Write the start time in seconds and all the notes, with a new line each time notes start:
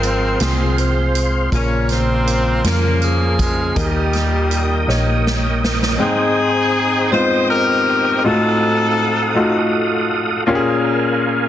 Already playing: G#1 G#2 F3 G#3 C4 F4 G#4 A#4 C5 F5 C6
0.03 closed hi-hat
0.40 C2 C4 F4 G#4 C5, snare, closed hi-hat
0.78 C5, closed hi-hat
1.15 closed hi-hat
1.52 A#1 A#2 C#3 F3 A#3 C#4 F4 A#4 C#5 F5, kick, closed hi-hat
1.89 F3 C4 C5, snare, closed hi-hat
2.27 closed hi-hat
2.64 F2 C#3 F3 A#3 C#4 F4 A#4, snare, closed hi-hat
3.02 G#4, closed hi-hat
3.39 G#3, kick, closed hi-hat
3.75 D#2 A#2 D#3 G3 A#3 D#4 G4 A#4 D#5 G5 D#6, kick, closed hi-hat
4.13 snare, closed hi-hat
4.51 closed hi-hat
4.87 A#1 A#3 D#4 G4 C#5, snare
5.27 snare
5.64 snare
5.83 snare
5.98 G#2 G#3 C4 D#4 G#4 C5 D#5 G5 D#6
7.11 G#3 B3 D#4 F4 C5
7.18 C4
7.50 D#4 G4 A#4
8.23 A2 G#3 D#4 F4 F#4 A4 F5 F#5
8.27 A3 C4
9.34 A3 D#4 F4 F#4
10.46 A#2 A#3 C#4 F4 G4 A#4 F5 G#5
10.55 G#4